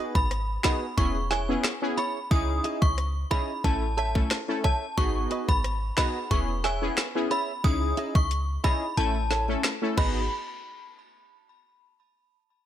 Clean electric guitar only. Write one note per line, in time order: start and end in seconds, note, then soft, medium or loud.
0.00 0.18 F#4 medium
0.00 0.18 B4 medium
0.00 0.18 D#5 loud
0.64 0.84 F#4 medium
0.64 0.85 B4 medium
0.64 0.85 D#5 loud
1.31 1.51 E4 medium
1.31 1.52 G#4 loud
1.31 1.52 C#5 loud
1.97 2.18 E4 medium
1.97 2.18 G#4 medium
1.97 2.19 C#5 medium
2.64 2.85 E4 medium
2.64 2.85 G#4 medium
2.64 2.85 D#5 medium
3.31 3.51 E4 medium
3.31 3.52 G#4 medium
3.31 3.52 D#5 medium
3.97 4.18 A4 medium
3.97 4.18 C#5 medium
3.97 4.19 E5 loud
4.64 4.84 A4 medium
4.64 4.85 C#5 medium
4.64 4.85 E5 loud
5.31 5.51 F#4 medium
5.31 5.52 B4 medium
5.31 5.52 D#5 medium
5.97 6.18 F#4 medium
5.97 6.18 B4 medium
5.97 6.19 D#5 medium
6.64 6.85 G#4 medium
6.64 6.85 C#5 medium
6.64 6.85 E5 loud
7.31 7.51 G#4 medium
7.31 7.52 C#5 medium
7.31 7.52 E5 medium
7.97 8.18 E4 medium
7.97 8.18 G#4 medium
7.97 8.19 D#5 medium
8.64 8.84 E4 medium
8.64 8.85 G#4 loud
8.64 8.85 D#5 loud
9.31 9.51 E4 medium
9.31 9.52 A4 medium
9.31 9.52 C#5 loud
9.97 10.18 F#4 medium
9.97 10.19 B4 medium
9.97 10.19 D#5 loud